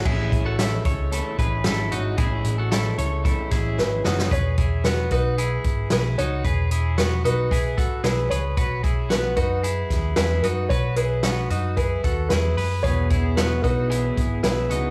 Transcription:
<<
  \new Staff \with { instrumentName = "Upright piano" } { \time 4/4 \key e \major \tempo 4 = 113 r1 | r2. b'4 | cis''4 b'8 b'4. b'8 cis''8~ | cis''4 b'8 b'4. b'8 cis''8~ |
cis''4 b'8 b'4. b'8 b'8 | cis''8 b'4. b'4 b'4 | cis''4 b'8 b'4. b'4 | }
  \new Staff \with { instrumentName = "Clean electric guitar" } { \time 4/4 \key e \major <e' gis'>8. <fis' a'>16 <e' a'>8 <a' cis''>8 <e' a'>8 <gis' b'>8 <e' a'>8 <dis' fis'>8 | <e' gis'>8. <fis' a'>16 <e' a'>8 <a' cis''>8 <e' a'>8 <e' gis'>4 <dis' fis'>8 | <gis' b'>8 <e' gis'>8 <b fis'>8 <dis' fis'>8 <e' gis'>4 <e' gis'>8 <dis' fis'>8 | <gis' b'>8 <e' gis'>8 <b fis'>8 <dis' fis'>8 <e' gis'>8 <fis' a'>8 <e' gis'>8 <gis' b'>8 |
<fis' b'>8 <e' gis'>8 <b fis'>8 <dis' fis'>8 <e' gis'>4 <e' gis'>8 <dis' fis'>8 | <fis' b'>8 <e' gis'>8 <b fis'>8 <dis' fis'>8 <e' gis'>8 <fis' a'>8 <e' gis'>8 <gis' b'>8 | <gis' b'>8 <e' gis'>8 <b fis'>8 <dis' fis'>8 <e' gis'>4 <e' gis'>8 <dis' fis'>8 | }
  \new Staff \with { instrumentName = "Clean electric guitar" } { \time 4/4 \key e \major <a, e gis cis' e'>8 <gis cis' e'>8 <e gis cis' e'>8 <gis cis' e'>8 <a, e gis cis' e'>8 <gis cis' e'>8 <e gis cis' e'>8 <gis cis' e'>8 | <a, e gis cis' e'>8 <gis cis' e'>8 <e gis cis' e'>8 <gis cis' e'>8 <a, e gis cis' e'>8 <gis cis' e'>8 <e gis cis' e'>8 <gis cis' e'>8 | r1 | r1 |
r1 | r1 | <e fis b e' gis'>8 <b e' gis'>8 <fis b e' gis'>8 <b e' gis'>8 <e fis b e' gis'>8 <b e' gis'>8 <fis b e' gis'>8 <b e' gis'>8 | }
  \new Staff \with { instrumentName = "Picked electric bass" } { \clef bass \time 4/4 \key e \major a,,8 a,,4 cis,8. r16 a,,8 gis,,8 gis,,8 | a,,8 a,,4 cis,8. r16 a,,8 gis,,8 fis,,8 | e,,4. b,,4 gis,,8 b,,8 cis,8 | e,,4. b,,4 gis,,8 b,,8 cis,8 |
b,,4. fis,4 dis,8 e,8 fis,8 | b,,4. fis,4 dis,8 e,8 fis,8 | e,,4. b,,4 gis,,8 b,,8 cis,8 | }
  \new DrumStaff \with { instrumentName = "Drums" } \drummode { \time 4/4 <cymc bd>8 <hh bd>8 <hh sn>8 <hh bd>8 hh8 <hh bd>8 <hh sn>8 hh8 | <hh bd>8 hh8 <hh sn>8 hh8 <hh bd>8 <hh bd sn>8 sn8 sn16 sn16 | <hh bd>8 <hh bd>8 <hh sn>8 <hh bd>8 hh8 <hh bd>8 <hh sn>8 hh8 | <hh bd>8 hh8 <hh sn>8 hh8 <hh bd>8 <hh bd>8 <hh sn>8 hh8 |
<hh bd>8 <hh bd>8 <hh sn>8 <hh bd>8 hh8 <hh bd sn>8 <hh sn>8 hh8 | <hh bd>8 hh8 <hh sn>8 hh8 <hh bd>8 <hh bd>8 <hh sn>8 hho8 | <hh bd>8 <hh bd>8 <hh sn>8 <hh bd>8 hh8 <hh bd>8 <hh sn>8 hh8 | }
>>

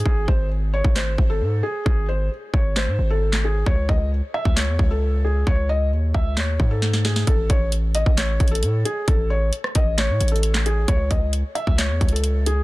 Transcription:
<<
  \new Staff \with { instrumentName = "Felt piano" } { \time 4/4 \key a \lydian \tempo 4 = 133 gis'8 bis'8 r8 cis''8 bis'8. a'8. gis'8 | gis'8 bis'8 r8 cis''8 bis'8. a'8. gis'8 | cis''8 dis''8 r8 e''8 cis''8. a'8. gis'8 | cis''8 dis''8 r8 e''8 cis''8. a'8. gis'8 |
a'8 cis''8 r8 dis''8 cis''8. a'8. gis'8 | a'8 cis''8 r8 dis''8 cis''8. a'8. gis'8 | cis''8 dis''8 r8 e''8 cis''8. a'8. gis'8 | }
  \new Staff \with { instrumentName = "808-style bass" } { \clef bass \time 4/4 \key a \lydian gis,,8 gis,,4~ gis,,16 gis,,8. gis,,8 gis,8 r8 | gis,,4 r8 gis,,8. gis,16 gis,,4. | cis,8 cis,8. r8 cis,8 e,16 cis,4. | cis,4 dis,8 cis,8 dis,8 gis,4. |
a,,8 a,,4~ a,,16 a,,8. a,,8 a,8 r8 | a,,4 r8 a,,8. a,16 a,,4. | cis,8 cis,8. r8 cis,8 e,16 cis,4. | }
  \new DrumStaff \with { instrumentName = "Drums" } \drummode { \time 4/4 bd8 bd8 r8. bd16 <hc sn>8 bd8 r4 | bd4 r8 bd8 <hc sn>4 r16 <hc sn>8. | bd8 bd8 r8. bd16 <hc sn>8 bd8 r4 | bd4 r8 bd8 <hc sn>8 bd8 sn16 sn16 sn16 sn16 |
<hh bd>8 <hh bd>8 hh8 hh16 bd16 \tuplet 3/2 { <hc hh sn>16 r16 r16 <hh bd>16 hh16 hh16 } hh8 hh8 | <hh bd>4 hh16 ss16 <hh bd>8 \tuplet 3/2 { <hc hh sn>16 r16 r16 hh16 hh16 hh16 } hh16 <hc sn>16 hh8 | <hh bd>8 <hh bd>8 hh8 hh16 bd16 \tuplet 3/2 { <hc hh sn>16 r16 r16 <hh bd>16 hh16 hh16 } hh8 hh8 | }
>>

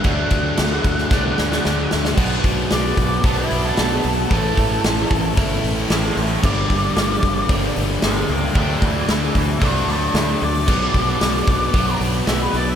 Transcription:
<<
  \new Staff \with { instrumentName = "Lead electric guitar" } { \time 4/4 \key b \phrygian \tempo 4 = 113 fis''2.~ fis''8 r8 | r4 d''4 a'16 e'8 a'4~ a'16 | a'2 r4 <e'' g''>8 <cis'' e''>8 | d''2 r4 <e'' g''>8 <e'' g''>8 |
<e'' g''>8 <b' e''>8 <b' e''>8 <b' e''>8 <b' d''>8 <b' d''>8 <b' d''>8 d''8~ | d''2~ d''8 r8 e''16 b'16 d''16 e''16 | }
  \new Staff \with { instrumentName = "Overdriven electric guitar" } { \clef bass \time 4/4 \key b \phrygian <d fis a d'>2 <d fis a d'>2 | <b, fis b d'>2 <b, fis b d'>2 | <a, e a cis' e'>2 <a, e a cis' e'>2 | <g, d g bes d'>2 <g, d g bes d'>2 |
<d fis a d'>2 <d fis a d'>2 | <b, fis b d'>2 <b, fis b d'>2 | }
  \new Staff \with { instrumentName = "Overdriven electric guitar" } { \clef bass \time 4/4 \key b \phrygian <d a d'>2 <d a d'>2 | <b, fis b>2 <b, fis b>2 | <a, e a>2 <a, e a>2 | <g, d g>2 <g, d g>2 |
<d a d'>2 <d a d'>2 | <b, fis b>2 <b, fis b>2 | }
  \new Staff \with { instrumentName = "Fingered electric bass" } { \clef bass \time 4/4 \key b \phrygian d,8 d,8 d,8 d,8 c,8 d,8 d,8 d,8 | b,,8 b,,8 b,,8 b,,8 b,,8 b,,8 b,,8 b,,8 | a,,8 a,,8 a,,8 a,,8 g,,8 a,,8 a,,8 a,,8 | g,,8 g,,8 g,,8 g,,8 g,,8 g,,8 g,,8 cis,8 |
d,8 d,8 d,8 d,8 c,8 d,8 d,8 d,8 | b,,8 b,,8 b,,8 b,,8 b,,8 b,,8 b,,8 b,,8 | }
  \new DrumStaff \with { instrumentName = "Drums" } \drummode { \time 4/4 <cymc bd>8 <cymc bd>8 <cymc sn>8 <cymc bd>16 sn16 <bd sn>8 sn16 sn16 sn8 sn16 sn16 | <cymc bd>8 <hho bd>8 <hho sn>8 <hho bd>8 <hho bd>8 hho8 <hho sn>8 hho8 | <hho bd>8 <hho bd>8 <hho sn>8 <hho bd>8 <hho bd>8 hho8 <hho sn>8 hho8 | <cymc bd>8 <hho bd>8 <hho sn>8 <hho bd>8 <hho bd>8 hho8 <hho sn>8 hho8 |
<hho bd>8 <hho bd>8 <hho sn>8 <hho bd>8 <hho bd>8 hho8 <hho sn>8 hho8 | <cymc bd>8 <hho bd>8 <hho sn>8 <hho bd>8 <hho bd>8 hho8 <hho sn>8 hho8 | }
>>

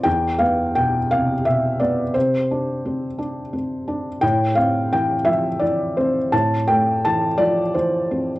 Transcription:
<<
  \new Staff \with { instrumentName = "Felt piano" } { \time 6/8 \key a \minor \tempo 4. = 57 g''8 f''8 g''8 f''8 e''8 d''8 | c''4. r4. | g''8 f''8 g''8 e''8 d''8 c''8 | a''8 g''8 a''8 d''8 c''4 | }
  \new Staff \with { instrumentName = "Felt piano" } { \clef bass \time 6/8 \key a \minor e,8 b8 b,8 c8 b,8 b8 | c8 d'8 c'8 d'8 c'8 d'8 | a,8 c'8 e8 f8 e8 c'8 | a,8 a8 e8 f8 e8 c'8 | }
>>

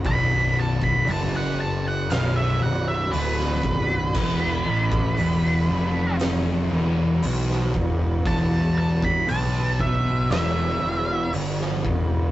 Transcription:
<<
  \new Staff \with { instrumentName = "Lead electric guitar" } { \time 4/4 \key e \dorian \tempo 4 = 58 b''8 a''16 b''16 a''16 fis''16 a''16 fis''16 eis''16 e''16 fis''16 e''16 b'4~ | b'2 r2 | a''8 a''16 b''16 a''8 e''8 e''4 r4 | }
  \new Staff \with { instrumentName = "String machine" } { \time 4/4 \key e \dorian << { <b d''>1 | e1~ | e1 | } \\ { fis'1~ | fis'1~ | fis'1 | } >> }
  \new Staff \with { instrumentName = "Distorted electric guitar" } { \clef bass \time 4/4 \key e \dorian b,,4 fis,4 b,,8 b,,8 d,8 b,,8 | e,8 a,8 e,8 eis,4 e,8 b,8 e,8 | e,4 b,4 e,8 e,8 g,8 e,8 | }
  \new Staff \with { instrumentName = "Distorted electric guitar" } { \clef bass \time 4/4 \key e \dorian b,,4 fis,4 b,,8 b,,8 d,8 b,,8 | e,8 a,8 e,8 eis,4 e,8 b,8 e,8 | e,4 b,4 e,8 e,8 g,8 e,8 | }
  \new Staff \with { instrumentName = "Picked electric bass" } { \clef bass \time 4/4 \key e \dorian b,,,4 fis,,4 b,,,8 b,,,8 d,,8 b,,,8 | e,,8 a,,8 e,,8 eis,,4 e,,8 b,,8 e,,8 | e,,4 b,,4 e,,8 e,,8 g,,8 e,,8 | }
  \new DrumStaff \with { instrumentName = "Drums" } \drummode { \time 4/4 <hho bd>8. bd16 hho4 <hho sn>4 hho16 sn16 bd8 | <cymc bd>8. bd16 hho4 <hho sn>4 hho16 sn16 bd8 | <hho bd>8. bd16 hho8 bd8 <hho sn>4 hho16 sn16 bd8 | }
>>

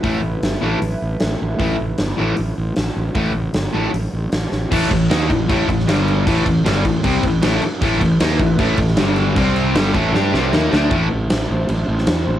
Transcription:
<<
  \new Staff \with { instrumentName = "Analog synth pad" } { \time 4/4 \key a \minor \tempo 4 = 155 <a e' b'>1~ | <a e' b'>1~ | <a e' b'>1 | r1 |
r1 | <a e' b'>2. r4 | r4 <a e' b'>2. | <e' c'' a''>1 | }
  \new Staff \with { instrumentName = "Distorted electric guitar" } { \clef bass \time 4/4 \key a \minor <a, e a>8 r4 <a, e a>8 r2 | <a, e a>8 r4 <a, e a>8 r2 | <a, e a>8 r4 <a, e a>8 r2 | <a, e a>8 <a, e>8 <dis bes dis'>8 <a, e>8 <a, e a>8 <a, e>8 <g, d g>4 |
<a, e a>8 <a, e>8 <g, d g>8 <a, e>8 <c g c'>8 <a, e>8 <a, e a>8 r8 | <a, e a>8 <a, e>8 <dis bes dis'>8 <a, e>8 <a, e a>8 <a, e>8 <g, d g>4 | <c g c'>4 <g, d g>8 <a, e a>8 <g d' g'>8 <c g c'>8 <dis bes dis'>8 <d a d'>8 | <a, e a>8 r2. r8 | }
  \new Staff \with { instrumentName = "Distorted electric guitar" } { \clef bass \time 4/4 \key a \minor r1 | r1 | r1 | <a, e a>8 <a, e>8 <dis bes dis'>8 <a, e>8 <a, e a>8 <a, e>8 <g, d g>4 |
<a, e a>8 <a, e>8 <g, d g>8 <a, e>8 <c g c'>8 <a, e>8 <a, e a>8 r8 | <a, e a>8 <a, e>8 <dis bes dis'>8 <a, e>8 <a, e a>8 <a, e>8 <g, d g>4 | <c g c'>4 <g, d g>8 <a, e a>8 <g d' g'>8 <c g c'>8 <dis bes dis'>8 <d a d'>8 | r1 | }
  \new Staff \with { instrumentName = "Overdriven electric guitar" } { \clef bass \time 4/4 \key a \minor <a, e a>8 r4 <a, e a>8 r2 | <a, e a>8 r4 <a, e a>8 r2 | <a, e a>8 r4 <a, e a>8 r2 | <a, e a>8 <a, e>8 <dis bes dis'>8 <a, e>8 <a, e a>8 <a, e>8 <g, d g>4 |
<a, e a>8 <a, e>8 <g, d g>8 <a, e>8 <c g c'>8 <a, e>8 <a, e a>8 r8 | <a, e a>8 <a, e>8 <dis bes dis'>8 <a, e>8 <a, e a>8 <a, e>8 <g, d g>4 | <c g c'>4 <g, d g>8 <a, e a>8 <g d' g'>8 <c g c'>8 <dis bes dis'>8 <d a d'>8 | <a, e a>8 r2. r8 | }
  \new Staff \with { instrumentName = "Fingered electric bass" } { \clef bass \time 4/4 \key a \minor a,,8 a,,8 g,,8 a,,8 a,,8 a,,8 a,,8 a,,8 | a,,8 a,,8 g,,8 a,,8 a,,8 a,,8 a,,8 a,,8 | a,,8 a,,8 g,,8 a,,8 a,,8 a,,8 a,,8 a,,8 | a,,8 a,,8 dis,8 a,,8 a,,8 a,,8 g,,4 |
a,,8 a,,8 g,,8 a,,8 c,8 a,,8 a,,8 r8 | a,,8 a,,8 dis,8 a,,8 a,,8 a,,8 g,,4 | c,4 g,,8 a,,8 g,8 c,8 dis,8 d,8 | a,,8 a,,8 a,,8 a,,8 a,,8 a,,8 e,8 a,,8 | }
  \new DrumStaff \with { instrumentName = "Drums" } \drummode { \time 4/4 <hho bd>4 <hho sn>4 hho4 <hho sn>4 | <hho bd>4 <hho sn>4 hho4 <hho sn>4 | <hho bd>4 <hho sn>4 hho4 <hho sn>8 sn8 | <cymc bd>8 <cymc bd>8 <cymc sn>8 <cymc bd>8 <cymc bd>8 <cymc bd>16 sn16 <cymc sn>8 cymc8 |
<cymc bd>8 <cymc bd>8 <cymc sn>8 <cymc bd>8 <cymc bd>8 <cymc bd>8 <cymc sn>8 cymc8 | <cymc bd>8 <cymc bd>8 <cymc sn>8 <cymc bd>8 <cymc bd>8 <cymc bd>16 sn16 <cymc sn>8 cymc8 | <cymc bd>8 cymc8 <cymc sn>8 <cymc bd>8 sn8 sn8 sn8 sn8 | <cymc bd>4 <cymc sn>4 cymc8. sn16 <cymc sn>4 | }
>>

